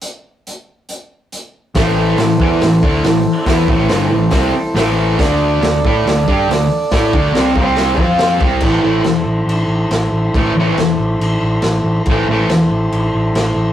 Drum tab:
CC |--------|--------|--------|--------|
HH |x-x-x-x-|o-o-o-o-|o-o-o-o-|o-o-o-o-|
SD |--------|o-o-o-o-|o-o-o-o-|o-o-o-o-|
BD |--------|o--o-o--|oo--o---|o--o-o--|

CC |--------|x-x-x-x-|x-x-x-x-|x-x-x-x-|
HH |o-o-o-o-|--------|--------|--------|
SD |o-o-o-o-|--o---o-|--o---o-|--o---o-|
BD |oo-o-o-o|o-------|o-------|o-------|